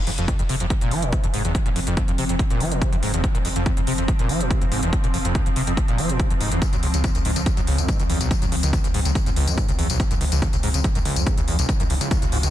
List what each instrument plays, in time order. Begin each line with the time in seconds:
Already playing: synth drone F3 C4
0.07 sub bass F1, acid bass F2, open hi-hat
0.18 sub bass F1, acid bass F2, closed hi-hat
0.28 acid bass F2, kick, closed hi-hat
0.39 sub bass F1, acid bass F2, closed hi-hat
0.49 sub bass F1, acid bass C3, open hi-hat
0.60 sub bass F1, acid bass F2, closed hi-hat
0.70 acid bass G#2, kick, closed hi-hat
0.81 sub bass F1, acid bass A#2, closed hi-hat
0.91 sub bass F1, acid bass F3, open hi-hat
1.02 sub bass F1, acid bass A#2, closed hi-hat
1.13 acid bass C3, kick, closed hi-hat
1.24 sub bass F1, acid bass F2, closed hi-hat
1.34 sub bass F1, acid bass G#2, open hi-hat
1.45 sub bass F1, acid bass E2, closed hi-hat
1.55 kick, closed hi-hat
1.66 sub bass F1, acid bass A#2, closed hi-hat
1.76 sub bass F1, acid bass F2, open hi-hat
1.87 sub bass F1, acid bass F2, closed hi-hat
1.97 kick, closed hi-hat
2.08 sub bass F1, acid bass F2, closed hi-hat
2.18 sub bass F1, acid bass C3, open hi-hat
2.29 sub bass F1, acid bass F2, closed hi-hat
2.39 kick, closed hi-hat
2.50 sub bass F1, acid bass A#2, closed hi-hat
2.60 sub bass F1, acid bass F3, open hi-hat
2.71 sub bass F1, acid bass A#2, closed hi-hat
2.81 acid bass C3, kick, closed hi-hat
2.93 sub bass F1, acid bass F2, closed hi-hat
3.03 sub bass F1, acid bass G#2, open hi-hat
3.14 sub bass F1, acid bass E2, closed hi-hat
3.24 kick, closed hi-hat
3.35 sub bass F1, acid bass A#2, closed hi-hat
3.45 sub bass F1, acid bass F2, open hi-hat
3.56 sub bass F1, acid bass F2, closed hi-hat
3.66 acid bass F2, kick, closed hi-hat
3.77 sub bass F1, acid bass F2, closed hi-hat
3.87 sub bass F1, acid bass C3, open hi-hat
3.98 sub bass F1, acid bass F2, closed hi-hat
4.08 acid bass G#2, kick, closed hi-hat
4.19 sub bass F1, acid bass A#2, closed hi-hat
4.29 sub bass F1, acid bass F3, open hi-hat
4.40 sub bass F1, acid bass A#2, closed hi-hat
4.50 acid bass C3, kick, closed hi-hat
4.61 sub bass F1, acid bass F2, closed hi-hat
4.71 sub bass F1, acid bass G#2, open hi-hat
4.83 sub bass F1, acid bass E2, closed hi-hat
4.93 kick, closed hi-hat
5.04 sub bass F1, acid bass A#2, closed hi-hat
5.14 sub bass F1, acid bass F2, open hi-hat
5.25 sub bass F1, acid bass F2, closed hi-hat
5.35 kick, closed hi-hat
5.46 sub bass F1, acid bass F2, closed hi-hat
5.56 sub bass F1, acid bass C3, open hi-hat
5.67 sub bass F1, acid bass F2, closed hi-hat
5.77 acid bass G#2, kick, closed hi-hat
5.88 sub bass F1, acid bass A#2, closed hi-hat
5.98 sub bass F1, acid bass F3, open hi-hat
6.09 sub bass F1, acid bass A#2, closed hi-hat
6.19 acid bass C3, kick, closed hi-hat
6.30 sub bass F1, acid bass F2, closed hi-hat
6.41 sub bass F1, acid bass G#2, open hi-hat
6.52 sub bass F1, acid bass E2, closed hi-hat
6.62 acid bass C#2, kick, closed hi-hat, tambourine
6.73 sub bass C#2, acid bass F#2, closed hi-hat, tambourine
6.83 sub bass C#2, acid bass C#2, open hi-hat
6.94 sub bass C#2, acid bass C#2, closed hi-hat, tambourine
7.04 kick, closed hi-hat, tambourine
7.15 sub bass C#2, acid bass C#2, closed hi-hat, tambourine
7.25 sub bass C#2, acid bass G#2, open hi-hat
7.36 sub bass C#2, acid bass C#2, closed hi-hat, tambourine
7.46 acid bass E2, kick, closed hi-hat, tambourine
7.57 sub bass C#2, acid bass F#2, closed hi-hat, tambourine
7.67 acid bass C#2, sub bass C#2, open hi-hat
7.78 sub bass C#2, acid bass F#2, closed hi-hat, tambourine
7.88 acid bass G#2, kick, closed hi-hat, tambourine
7.99 acid bass C#2, sub bass C#2, closed hi-hat, tambourine
8.09 sub bass C#2, acid bass E2, open hi-hat
8.21 acid bass B1, sub bass C#2, closed hi-hat, tambourine
8.31 acid bass C#2, kick, closed hi-hat, tambourine
8.42 sub bass C#2, acid bass F#2, closed hi-hat, tambourine
8.52 sub bass C#2, acid bass C#2, open hi-hat
8.63 sub bass C#2, acid bass C#2, closed hi-hat, tambourine
8.73 kick, closed hi-hat, tambourine
8.84 acid bass C#2, sub bass C#2, closed hi-hat, tambourine
8.94 sub bass C#2, acid bass G#2, open hi-hat
9.05 acid bass C#2, sub bass C#2, closed hi-hat, tambourine
9.15 acid bass E2, kick, closed hi-hat, tambourine
9.26 sub bass C#2, acid bass F#2, closed hi-hat, tambourine
9.36 acid bass C#2, sub bass C#2, open hi-hat
9.47 sub bass C#2, acid bass F#2, closed hi-hat, tambourine
9.58 acid bass G#2, kick, closed hi-hat, tambourine
9.68 acid bass C#2, sub bass C#2, closed hi-hat, tambourine
9.79 sub bass C#2, acid bass E2, open hi-hat
9.90 acid bass B1, sub bass C#2, closed hi-hat, tambourine
10.00 acid bass C#2, kick, closed hi-hat, riser
10.11 sub bass C#2, acid bass F#2, closed hi-hat, tambourine
10.21 sub bass C#2, acid bass C#2, open hi-hat
10.32 sub bass C#2, acid bass C#2, closed hi-hat, tambourine
10.42 acid bass C#2, kick, closed hi-hat
10.53 sub bass C#2, acid bass C#2, closed hi-hat, tambourine
10.63 sub bass C#2, acid bass G#2, open hi-hat
10.74 sub bass C#2, acid bass C#2, closed hi-hat, tambourine
10.84 acid bass E2, kick, closed hi-hat
10.95 sub bass C#2, acid bass F#2, closed hi-hat, tambourine
11.05 sub bass C#2, acid bass C#2, open hi-hat
11.16 sub bass C#2, acid bass F#2, closed hi-hat, tambourine
11.26 acid bass G#2, kick, closed hi-hat, tambourine
11.37 sub bass C#2, acid bass C#2, closed hi-hat, tambourine
11.48 sub bass C#2, acid bass E2, open hi-hat
11.59 acid bass B1, sub bass C#2, closed hi-hat, tambourine
11.69 kick, closed hi-hat, tambourine
11.80 sub bass C#2, acid bass F#2, closed hi-hat, tambourine
11.90 sub bass C#2, acid bass C#2, open hi-hat
12.01 sub bass C#2, acid bass C#2, closed hi-hat, tambourine
12.11 acid bass C#2, kick, closed hi-hat, tambourine
12.22 acid bass C#2, sub bass C#2, closed hi-hat, tambourine
12.32 sub bass C#2, acid bass G#2, open hi-hat
12.43 acid bass C#2, sub bass C#2, closed hi-hat, tambourine